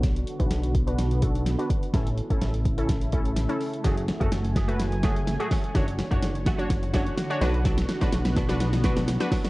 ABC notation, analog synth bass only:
X:1
M:4/4
L:1/16
Q:1/4=126
K:Bdor
V:1 name="Analog synth bass" clef=bass
B,,,3 B,,, B,,,12 | A,,,3 A,,, A,,,12 | F,,,3 F,,, F,,,12 | F,,,3 F,,, F,,,8- F,,,2 B,,,2- |
B,,,3 B,,, B,,,12 |]